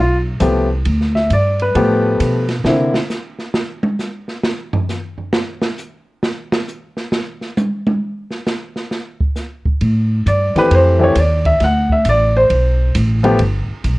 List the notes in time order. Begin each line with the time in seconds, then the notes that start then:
Already playing: B1
0.00 F4
0.40 C2 F3 A3 B3 G4, kick, hi-hat pedal, ride
0.85 D2, kick, ride
1.01 snare
1.15 E5, snare
1.30 G2 D5, kick, hi-hat pedal, ride
1.60 B4, ride
1.75 A2 F3 A3 B3 G4, kick, ride
2.20 B2, kick, hi-hat pedal, ride
2.49 snare, ride
2.64 C3 D3 A#3 C4 E4, snare
2.94 snare
3.10 snare, hi-hat pedal
3.38 snare
3.54 snare
3.83 high tom
3.99 snare, hi-hat pedal
4.28 snare
4.43 snare
4.73 floor tom
4.89 snare, hi-hat pedal
5.18 floor tom
5.33 snare
5.62 snare
5.78 hi-hat pedal
6.23 snare
6.52 snare
6.68 hi-hat pedal
6.97 snare
7.12 snare
7.41 snare
7.57 hi-hat pedal, high tom
7.87 high tom
8.31 snare
8.46 snare, hi-hat pedal
8.76 snare
8.91 snare
9.20 kick
9.35 snare, hi-hat pedal
9.65 muted upright bass stroke, kick
9.81 A2, kick, ride
10.26 G2 D5, kick, hi-hat pedal, ride
10.55 E3 A3 C4 G4 B4, muted upright bass stroke, snare, ride
10.71 F2 C5, kick, ride
10.99 E3 A3 C4 G4
11.03 C#5
11.15 D#2 D5, kick, hi-hat pedal, ride
11.45 E5, kick, ride
11.60 D2 F#5, kick, snare, ride
11.90 E5, kick
12.05 A1, kick, hi-hat pedal, ride
12.09 D5
12.37 C5
12.50 B1, kick, ride
12.95 A1, kick, hi-hat pedal, ride
13.23 F3 A3 B3 G4, ride
13.39 G1, kick, ride
13.68 muted upright bass stroke
13.84 B1, kick, hi-hat pedal, ride